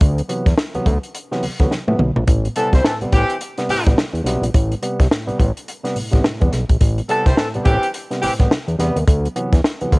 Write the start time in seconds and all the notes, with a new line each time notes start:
0.01 D2, kick, closed hi-hat
0.18 F#3 B3, closed hi-hat
0.29 C3 E3 F#3 B3, closed hi-hat
0.46 E2, kick, snare, closed hi-hat
0.57 snare
0.74 D2 C3 E3 F#3 B3, closed hi-hat
0.86 D2 F#3 B3, kick, closed hi-hat
1.03 closed hi-hat
1.15 closed hi-hat
1.31 C3 E3 F#3 B3, snare
1.42 D2, open hi-hat
1.59 D2 C3 E3 F#3 B3, kick, snare, closed hi-hat
1.71 snare
1.88 A2 C3 E3 F#3 B3, high tom
1.99 B1 F#3 B3, mid tom
2.16 A#1, floor tom
2.28 A1 A2, kick, closed hi-hat
2.45 G3 B3, closed hi-hat
2.56 C3 E3 G3 B3 C4 A4, closed hi-hat
2.73 C2 G3 E4 C5, kick, snare, closed hi-hat
2.84 A2 E3 C4 A4, snare
3.01 A1 C3 G3 B3, closed hi-hat
3.12 A1 E3 G3 B3 C4 G4, kick, closed hi-hat
3.30 closed hi-hat
3.41 closed hi-hat
3.58 C3 G3 B3, snare, closed hi-hat
3.69 A1 A2 E3 C4 G4, open hi-hat
3.86 A1 C3 G3 B3, kick, snare, closed hi-hat
3.98 snare
4.13 E2, closed hi-hat
4.24 B1 C3 G3 B3, snare, closed hi-hat
4.41 A#1, closed hi-hat
4.54 A1 A2, kick, closed hi-hat
4.71 G3 B3, closed hi-hat
4.82 C3 G3 B3, closed hi-hat
5.00 C2, kick, snare, closed hi-hat
5.11 A2, snare
5.27 A1 C3 G3 B3, closed hi-hat
5.39 A1 G3 B3, kick, closed hi-hat
5.57 closed hi-hat
5.68 closed hi-hat
5.84 C3 G3 B3, snare, closed hi-hat
5.95 A1 A2, open hi-hat
6.12 A1 C3 G3 B3, kick, snare, closed hi-hat
6.24 A2, snare
6.41 E2 C3 G3 B3, kick, closed hi-hat
6.52 B1 G3 B3, snare, closed hi-hat
6.69 A#1, kick, closed hi-hat
6.81 A1 A2, kick, closed hi-hat
6.98 G3 B3, closed hi-hat
7.09 C3 E3 G3 B3 C4 A4, closed hi-hat
7.26 C2 G3 E4 C5, kick, snare, closed hi-hat
7.37 A2 E3 C4 A4, snare
7.54 A1 C3 G3 B3, closed hi-hat
7.64 A1 E3 G3 B3 C4 G4, kick, closed hi-hat
7.83 closed hi-hat
7.94 closed hi-hat
8.11 C3 G3 B3, snare, closed hi-hat
8.21 A1 A2 E3 C4 G4, open hi-hat
8.39 A1 C3 G3 B3, kick, snare, closed hi-hat
8.51 snare
8.68 E2, closed hi-hat
8.79 E2 C3 G3 B3, snare, closed hi-hat
8.96 D#2, closed hi-hat
9.07 D2, kick, closed hi-hat
9.24 F#3 B3, closed hi-hat
9.36 C3 E3 F#3 B3, closed hi-hat
9.53 E2, kick, snare, closed hi-hat
9.64 snare
9.81 D2 C3 E3 F#3 B3, closed hi-hat
9.92 D2 F#3 B3, kick, closed hi-hat